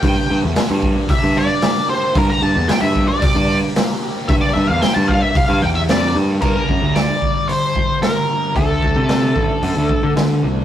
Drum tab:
CC |--------|--------|--------|x-------|
HH |o-o-o-o-|o-o-o-o-|o-o-o-o-|--o-o-o-|
SD |--o---o-|--o---o-|--o---o-|--o---o-|
BD |o--oo---|o--oo---|o--oo---|oo-o-o--|

CC |--------|
HH |o-o-o-o-|
SD |--o---o-|
BD |oo-o-o--|